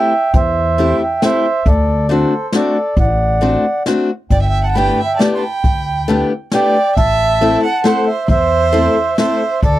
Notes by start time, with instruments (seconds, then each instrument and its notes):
Already playing: steel-string acoustic guitar A3 C4 E4 G4, accordion E5 G5
0.34 upright bass E2, accordion C5 E5, kick, closed hi-hat
0.78 steel-string acoustic guitar A3 C4 E4 G4, closed hi-hat
1.02 accordion E5 G5
1.22 steel-string acoustic guitar A3 C4 E4 G4, accordion C5 E5, snare, closed hi-hat
1.66 upright bass D2, accordion A4 D5, kick, closed hi-hat
2.09 steel-string acoustic guitar A3 C4 D4 F#4, accordion A4 C5, closed hi-hat
2.52 steel-string acoustic guitar A3 C4 D4 F#4, accordion A4 D5, snare, closed hi-hat
2.96 upright bass A1, accordion D5 F#5, kick, closed hi-hat
3.41 steel-string acoustic guitar A3 C4 D4 F#4, closed hi-hat
3.86 steel-string acoustic guitar A3 C4 D4 F#4, snare, closed hi-hat
4.30 upright bass G1, accordion D5 G5, violin D5, kick, closed hi-hat
4.40 violin E5, accordion G5
4.48 violin E5, accordion E5 G5
4.63 violin F#5, accordion F#5 A5
4.72 steel-string acoustic guitar A3, violin G5, accordion B5
4.76 steel-string acoustic guitar B3 D4 G4, accordion G5, closed hi-hat
5.00 violin E5, accordion G5
5.06 accordion E5
5.16 steel-string acoustic guitar A3, violin D5, accordion A5
5.20 steel-string acoustic guitar B3 D4 G4, accordion D5, snare, closed hi-hat
5.34 violin G5 A5, accordion C6
5.38 accordion B5
5.43 accordion G5
5.64 upright bass D2, kick, closed hi-hat
6.08 steel-string acoustic guitar A3 B3 D4 G4, closed hi-hat
6.51 steel-string acoustic guitar A3 B3 D4 G4, violin D5, accordion D5 G5, snare, closed hi-hat
6.96 upright bass A1, violin E5, accordion E5 A5, kick, closed hi-hat
7.41 steel-string acoustic guitar A3 C4 E4 A4, closed hi-hat
7.64 violin F#5, accordion F#5 A5
7.84 steel-string acoustic guitar A3 C4 E4 A4, violin C5, accordion C5 F#5, snare, closed hi-hat
8.07 violin C5, accordion C5 E5
8.28 upright bass E2, violin C5, accordion C5 E5, kick, closed hi-hat
8.73 steel-string acoustic guitar A3 C4 E4 A4, closed hi-hat
9.18 steel-string acoustic guitar A3 C4 E4 A4, violin C5, accordion C5 E5, snare, closed hi-hat
9.63 upright bass D2, violin A4, accordion A4 D5, kick, closed hi-hat